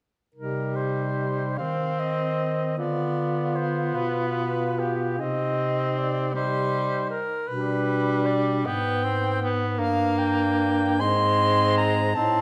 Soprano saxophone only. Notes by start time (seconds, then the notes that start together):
0.35 A#4
0.76 C5
1.58 F5
1.99 D#5
2.78 D5
3.55 C5
3.95 B4
4.79 G4
5.20 D#5
5.98 D5
6.35 C5
7.10 A#4
7.48 B4
8.26 D5
8.67 G5
9.79 F5
10.18 G5
11.00 C6
11.78 A#5
12.15 A5